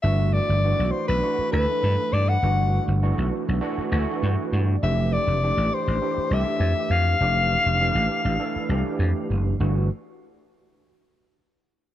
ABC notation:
X:1
M:4/4
L:1/16
Q:1/4=100
K:G
V:1 name="Soprano saxophone"
e2 d4 c B3 B4 d f- | f3 z12 z | e2 d4 c4 e4 =f2- | =f12 z4 |
z16 |]
V:2 name="Tine electric piano"
z16 | z8 z2 a2 f2 d2 | z16 | z16 |
z16 |]
V:3 name="Tine electric piano"
[E,A,DF]4 [E,A,DF]4 [E,A,DF]2 [E,A,DA]6 | [E,A,DF]4 [E,A,DF]4 [E,A,DF]2 [E,A,DF]6 | [E,A,DG]4 [E,A,DG]4 [E,A,DG]2 [E,A,DG]6 | [E,A,DG]4 [E,A,DG]4 [E,A,DA]2 [E,A,DG]6 |
[E,A,DF]2 z12 z2 |]
V:4 name="Slap bass" clef=bass
G,,,3 G,,,2 B,,, z B,,, z2 D,, z G,, z G,,2 | G,,,3 G,,,2 B,,, z B,,, z2 D,, z G,, z G,,2 | =F,,,3 F,,,2 A,,, z A,,, z2 C,, z =F,, z F,,2 | =F,,,3 F,,,2 A,,, z A,,, z2 C,, z =F,, z ^F,,,2 |
G,,,2 z12 z2 |]